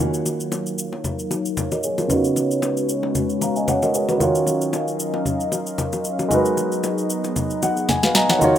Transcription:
0.00 1.53 D#3 medium
0.00 2.08 F#3 medium
0.00 1.54 A#3 medium
0.00 2.08 D#4 medium
0.00 1.29 F4 medium
0.00 1.29 F#4 medium
0.00 2.08 A#4 medium
0.00 4.16 C#5 medium
0.00 1.30 C#5 medium
0.00 0.13 D#5 medium
0.00 2.08 F5 medium
0.00 0.13 G#5 medium
0.00 low conga medium
0.14 shaker medium
0.26 low bongo medium
0.26 shaker medium
0.40 shaker medium
0.52 high bongo medium
0.52 shaker medium
0.66 shaker soft
0.78 shaker medium
0.93 high bongo medium
1.04 low conga medium
1.04 shaker medium
1.19 shaker soft
1.31 low bongo medium
1.31 shaker medium
1.45 shaker medium
1.57 high bongo medium
1.57 low conga medium
1.57 shaker medium
1.72 1.84 A#4 medium
1.72 1.83 D#5 medium
1.72 low bongo medium
1.72 shaker medium
1.83 1.98 G#4 medium
1.83 1.98 C#5 medium
1.83 shaker medium
1.98 2.24 F4 medium
1.98 2.24 A#4 medium
1.98 low bongo medium
1.98 shaker soft
2.08 4.15 C#3 medium
2.08 4.18 G#3 medium
2.08 4.16 B3 medium
2.08 6.27 C#4 medium
2.08 4.17 D#4 medium
2.08 4.18 F#4 medium
2.08 4.18 B4 medium
2.08 low conga medium
2.08 shaker medium
2.12 3.40 F#4 medium
2.12 3.41 C#5 medium
2.24 shaker medium
2.36 low bongo medium
2.36 shaker medium
2.51 shaker medium
2.62 high bongo medium
2.62 shaker medium
2.77 shaker soft
2.89 shaker medium
3.03 high bongo medium
3.15 low conga medium
3.15 shaker medium
3.30 shaker soft
3.41 3.56 F5 medium
3.41 3.55 A#5 medium
3.41 low bongo medium
3.41 shaker medium
3.56 3.68 D#5 medium
3.56 3.67 G#5 medium
3.56 shaker medium
3.68 3.82 C#5 medium
3.68 3.82 F#5 medium
3.68 high bongo medium
3.68 low conga medium
3.68 shaker medium
3.82 3.94 A#4 medium
3.82 3.94 D#5 medium
3.82 low bongo medium
3.82 shaker medium
3.94 4.08 G#4 medium
3.94 4.08 C#5 medium
3.94 shaker medium
4.09 4.21 F#4 medium
4.09 4.34 B4 medium
4.09 low bongo medium
4.09 shaker soft
4.18 6.26 D#3 medium
4.18 8.38 F#3 medium
4.18 6.26 D#4 medium
4.18 6.27 F4 medium
4.18 6.29 A#4 medium
4.18 6.29 D#5 medium
4.18 6.29 F5 medium
4.18 low conga medium
4.18 shaker medium
4.22 6.28 F#4 medium
4.22 6.29 C#5 medium
4.35 shaker medium
4.47 low bongo medium
4.47 shaker medium
4.61 shaker medium
4.73 high bongo medium
4.73 shaker medium
4.88 shaker soft
5.00 shaker medium
5.14 high bongo medium
5.26 low conga medium
5.26 shaker medium
5.40 shaker soft
5.52 low bongo medium
5.52 shaker medium
5.67 shaker medium
5.78 high bongo medium
5.78 low conga medium
5.78 shaker medium
5.93 low bongo medium
5.93 shaker medium
6.04 shaker medium
6.19 low bongo medium
6.19 shaker medium
6.29 8.36 G#3 medium
6.29 8.40 B3 medium
6.29 8.37 D#4 medium
6.29 8.40 D#4 medium
6.29 8.38 F#4 medium
6.29 8.40 G#4 medium
6.29 8.59 D#5 medium
6.29 low conga medium
6.29 shaker medium
6.33 7.87 A#4 medium
6.33 7.87 B4 medium
6.45 shaker medium
6.57 low bongo soft
6.57 shaker medium
6.72 shaker medium
6.83 high bongo medium
6.83 shaker medium
6.98 shaker soft
7.10 shaker medium
7.24 high bongo medium
7.24 shaker soft
7.36 low conga medium
7.36 shaker medium
7.50 shaker soft
7.62 7.87 F#5 medium
7.62 high bongo soft
7.62 low bongo medium
7.62 shaker medium
7.77 shaker medium
7.89 8.14 G#5 medium
7.89 snare medium
7.89 high bongo medium
7.89 low conga medium
7.89 shaker medium
8.03 8.15 B4 medium
8.03 8.15 F5 medium
8.03 snare medium
8.03 low bongo medium
8.03 shaker medium
8.15 8.29 D#5 medium
8.15 8.29 G#5 medium
8.15 8.40 A#5 medium
8.15 snare medium
8.15 shaker medium
8.30 8.43 C#5 medium
8.30 8.55 F#5 medium
8.30 snare medium
8.30 low bongo medium
8.30 shaker medium
8.39 8.59 D#3 medium
8.39 8.59 F#3 medium
8.39 8.59 C#4 medium
8.39 8.59 D#4 medium
8.39 8.59 F4 medium
8.39 8.59 F5 medium
8.39 low conga medium
8.39 shaker medium
8.43 8.59 F#4 medium
8.43 8.59 C#5 medium

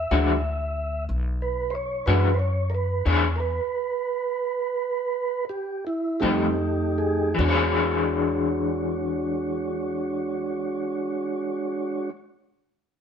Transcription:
0.00 1.05 E5 medium
0.11 1.06 D2 loud
0.11 0.31 E3 medium
0.11 0.41 F#3 soft
0.11 0.31 G#3 medium
0.11 0.41 G#3 soft
0.11 0.31 D4 medium
0.11 0.42 D4 medium
0.11 0.31 F#4 medium
1.09 2.04 B1 medium
1.42 1.74 B4 medium
1.70 1.74 C5 medium
1.75 2.06 C#5 loud
2.06 3.03 F#2 medium
2.06 2.27 E3 medium
2.06 2.27 G#3 medium
2.06 2.27 D4 medium
2.06 2.27 F#4 medium
2.06 2.38 B4 medium
2.34 2.39 C5 medium
2.39 2.72 C#5 medium
2.70 2.74 A#4 medium
2.75 3.06 B4 medium
3.05 3.58 E2 medium
3.05 3.26 E3 medium
3.05 3.26 D4 medium
3.05 3.26 G#4 medium
3.05 3.26 C#5 medium
3.36 3.40 A#4 medium
3.40 5.45 B4 loud
5.49 5.85 G4 medium
5.87 6.22 E4 medium
6.20 7.35 F2 loud
6.20 6.46 F3 medium
6.20 6.57 G3 medium
6.20 7.34 A3 medium
6.20 6.45 A3 medium
6.20 6.59 C4 loud
6.20 7.34 D#4 medium
6.20 6.45 D#4 medium
6.20 7.33 G4 medium
6.20 6.45 G4 medium
6.98 7.37 G#4 medium
7.35 12.10 E2 loud
7.35 12.10 E3 medium
7.35 12.10 G#3 medium
7.35 12.09 F#4 medium
7.35 12.10 C#5 medium
7.39 12.10 D4 medium
7.39 12.16 D4 medium
7.45 12.20 G#4 medium
7.45 12.24 C#5 medium

